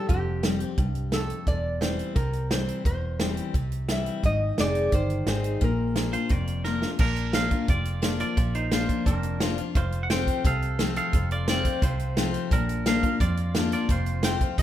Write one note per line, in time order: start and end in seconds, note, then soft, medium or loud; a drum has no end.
0.09 0.63 F1 medium
0.09 0.75 F2 medium
0.09 1.13 G4 medium
0.09 kick loud
0.09 closed hi-hat medium
0.43 0.60 F3 medium
0.43 0.60 G3 medium
0.43 0.60 C4 medium
0.43 0.59 G4 medium
0.43 snare loud
0.43 closed hi-hat medium
0.60 0.78 C4 soft
0.60 0.77 G4 medium
0.60 closed hi-hat medium
0.78 1.32 C2 medium
0.78 1.11 G2 medium
0.78 kick loud
0.78 closed hi-hat medium
0.95 closed hi-hat medium
1.12 1.46 F2 medium
1.12 1.45 A4 medium
1.12 snare loud
1.12 closed hi-hat medium
1.30 closed hi-hat medium
1.47 2.01 E1 medium
1.47 2.13 E2 medium
1.47 1.80 D5 medium
1.47 kick loud
1.47 closed hi-hat medium
1.81 2.14 E3 medium
1.81 2.15 G3 medium
1.81 2.15 C4 medium
1.81 2.15 E4 medium
1.81 2.15 C5 medium
1.81 snare loud
1.81 closed hi-hat medium
1.99 closed hi-hat medium
2.15 2.70 C2 medium
2.15 2.82 C3 medium
2.15 2.48 A#4 medium
2.15 kick loud
2.15 closed hi-hat medium
2.33 closed hi-hat medium
2.51 2.84 E3 medium
2.51 2.84 G3 medium
2.51 2.84 C4 medium
2.51 2.85 E4 medium
2.51 2.83 C5 medium
2.51 snare loud
2.51 closed hi-hat medium
2.68 closed hi-hat medium
2.85 3.39 E1 medium
2.85 3.51 E2 medium
2.85 3.34 C5 medium
2.85 kick loud
2.85 closed hi-hat medium
3.20 3.53 E3 soft
3.20 3.53 G3 medium
3.20 3.53 C4 medium
3.20 3.54 E4 medium
3.20 snare loud
3.20 closed hi-hat medium
3.37 closed hi-hat medium
3.54 4.08 C2 medium
3.54 4.21 C3 medium
3.54 kick loud
3.54 closed hi-hat medium
3.72 closed hi-hat medium
3.89 4.22 E3 medium
3.89 4.22 G3 medium
3.89 4.22 C4 medium
3.89 4.22 E4 medium
3.89 4.25 E5 medium
3.89 snare loud
3.89 closed hi-hat medium
4.06 closed hi-hat medium
4.23 4.51 G#1 medium
4.23 4.90 G#2 medium
4.23 4.57 D#5 medium
4.23 kick loud
4.23 closed hi-hat medium
4.58 4.88 F1 medium
4.58 4.91 G#3 medium
4.58 4.91 C4 medium
4.58 4.92 D#4 medium
4.58 4.92 G#4 medium
4.58 4.94 D5 loud
4.58 snare loud
4.58 closed hi-hat medium
4.75 closed hi-hat medium
4.92 5.22 G1 medium
4.92 5.59 D#3 medium
4.92 5.26 C5 medium
4.92 kick loud
4.92 closed hi-hat medium
5.10 closed hi-hat medium
5.26 5.56 G#1 medium
5.26 5.60 G#3 medium
5.26 5.60 C4 medium
5.26 5.60 D#4 medium
5.26 5.60 G#4 medium
5.26 5.63 C5 medium
5.26 snare medium
5.26 closed hi-hat medium
5.44 closed hi-hat medium
5.61 6.16 A#1 medium
5.61 6.27 A#2 medium
5.61 6.62 A#4 medium
5.61 kick loud
5.61 closed hi-hat medium
5.96 6.13 F3 medium
5.96 6.13 A#3 medium
5.96 6.13 D4 medium
5.96 6.11 F4 medium
5.96 snare loud
5.96 closed hi-hat medium
6.13 6.30 D4 soft
6.13 6.30 F4 soft
6.13 6.31 C5 medium
6.13 closed hi-hat medium
6.29 6.85 F1 medium
6.29 6.96 F2 medium
6.29 6.64 D5 medium
6.29 kick loud
6.29 closed hi-hat medium
6.47 closed hi-hat medium
6.64 6.82 F3 medium
6.64 6.82 A#3 medium
6.64 6.82 D4 medium
6.64 6.81 F4 medium
6.64 6.90 A#4 medium
6.64 snare medium
6.82 7.00 D4 soft
6.82 6.99 F4 soft
6.82 snare medium
6.99 7.54 A#1 medium
6.99 7.65 A#2 medium
6.99 7.32 D4 medium
6.99 7.32 A#4 medium
6.99 kick loud
6.99 crash medium
7.16 closed hi-hat medium
7.33 7.51 F3 medium
7.33 7.51 A#3 medium
7.33 7.51 D4 medium
7.33 7.50 F4 medium
7.33 7.66 A#4 medium
7.33 7.67 F5 loud
7.33 snare loud
7.33 closed hi-hat medium
7.51 7.69 D4 soft
7.51 7.68 F4 medium
7.51 kick medium
7.51 closed hi-hat medium
7.68 8.22 F1 medium
7.68 8.34 F2 medium
7.68 8.17 F4 medium
7.68 8.20 D5 medium
7.68 kick loud
7.68 closed hi-hat medium
7.85 closed hi-hat medium
8.02 8.35 F3 medium
8.02 8.36 A#3 medium
8.02 8.36 D4 medium
8.02 8.36 F4 medium
8.02 snare loud
8.02 closed hi-hat medium
8.20 8.52 F4 medium
8.20 8.56 D5 medium
8.20 closed hi-hat medium
8.37 8.91 A#1 medium
8.37 9.03 A#2 medium
8.37 kick loud
8.37 closed hi-hat medium
8.55 8.71 D#4 medium
8.55 8.71 C5 medium
8.55 closed hi-hat medium
8.71 9.05 F3 medium
8.71 9.05 A#3 medium
8.71 9.05 D4 medium
8.71 9.05 F4 medium
8.71 9.06 C5 medium
8.71 snare loud
8.71 closed hi-hat medium
8.89 kick medium
8.89 closed hi-hat medium
9.06 9.60 F1 medium
9.06 9.73 F2 medium
9.06 9.55 D4 medium
9.06 9.55 A#4 medium
9.06 kick loud
9.06 closed hi-hat medium
9.23 closed hi-hat medium
9.40 9.58 F3 medium
9.40 9.58 A#3 medium
9.40 9.58 D4 loud
9.40 9.57 F4 medium
9.40 snare loud
9.40 closed hi-hat medium
9.58 9.76 D4 soft
9.58 9.75 F4 medium
9.58 closed hi-hat medium
9.75 10.30 F1 medium
9.75 10.42 F2 medium
9.75 10.02 F4 medium
9.75 10.04 C5 medium
9.75 kick loud
9.75 closed hi-hat medium
9.92 closed hi-hat medium
10.03 10.10 F#5 medium
10.10 10.43 F3 medium
10.10 10.43 A3 medium
10.10 10.44 C4 medium
10.10 10.44 F4 loud
10.10 10.43 C5 medium
10.10 10.46 G5 loud
10.10 snare loud
10.10 closed hi-hat medium
10.27 kick medium
10.27 closed hi-hat medium
10.44 10.99 C2 medium
10.44 11.10 C3 medium
10.44 10.94 A4 medium
10.44 10.94 F5 medium
10.44 kick loud
10.44 closed hi-hat medium
10.62 closed hi-hat medium
10.79 11.12 F3 medium
10.79 11.12 A3 medium
10.79 11.13 C4 medium
10.79 11.13 F4 medium
10.79 snare loud
10.79 closed hi-hat medium
10.96 11.29 A4 medium
10.96 11.29 F5 medium
10.96 closed hi-hat medium
11.13 11.67 F1 medium
11.13 11.80 F2 medium
11.13 kick loud
11.13 closed hi-hat medium
11.31 11.48 F4 medium
11.31 11.48 D5 loud
11.31 closed hi-hat medium
11.48 11.81 F3 medium
11.48 11.81 A3 medium
11.48 11.82 C4 medium
11.48 11.82 F4 medium
11.48 11.81 F4 medium
11.48 11.84 D5 loud
11.48 snare loud
11.48 closed hi-hat medium
11.65 kick medium
11.65 closed hi-hat medium
11.82 12.36 C2 medium
11.82 12.48 C3 medium
11.82 12.31 F4 medium
11.82 12.31 C5 medium
11.82 kick loud
11.82 closed hi-hat medium
11.99 closed hi-hat medium
12.17 12.50 F3 medium
12.17 12.50 A3 medium
12.17 12.51 C4 medium
12.17 12.51 F4 loud
12.17 snare loud
12.17 closed hi-hat medium
12.34 closed hi-hat medium
12.51 13.05 A#1 medium
12.51 13.17 A#2 medium
12.51 12.85 D4 medium
12.51 12.86 A#4 medium
12.51 kick loud
12.51 closed hi-hat medium
12.69 closed hi-hat medium
12.86 13.03 F3 medium
12.86 13.03 A#3 medium
12.86 13.03 D4 medium
12.86 13.02 F4 medium
12.86 13.19 A#4 medium
12.86 13.20 F5 medium
12.86 snare loud
12.86 closed hi-hat medium
13.03 13.20 D4 soft
13.03 13.20 F4 medium
13.03 kick medium
13.03 closed hi-hat medium
13.20 13.74 F2 medium
13.20 13.86 F2 medium
13.20 13.69 F4 medium
13.20 13.72 D5 medium
13.20 kick loud
13.20 closed hi-hat medium
13.37 closed hi-hat medium
13.55 13.88 F3 medium
13.55 13.88 A#3 medium
13.55 13.88 D4 medium
13.55 13.89 F4 medium
13.55 snare loud
13.55 closed hi-hat medium
13.72 13.89 F4 medium
13.72 13.91 D5 medium
13.72 closed hi-hat medium
13.89 14.43 F1 medium
13.89 14.56 F2 medium
13.89 14.22 F4 medium
13.89 14.24 C5 medium
13.89 kick loud
13.89 closed hi-hat medium
14.06 closed hi-hat medium
14.23 14.41 F3 medium
14.23 14.41 A3 medium
14.23 14.41 C4 loud
14.23 14.41 F4 loud
14.23 14.57 C5 medium
14.23 14.59 G5 loud
14.23 snare loud
14.23 closed hi-hat medium
14.41 14.59 C4 soft
14.41 14.58 F4 medium
14.41 kick medium
14.41 closed hi-hat medium
14.58 14.63 C2 medium
14.58 14.63 G2 medium
14.58 14.63 F5 loud
14.58 kick loud
14.58 closed hi-hat loud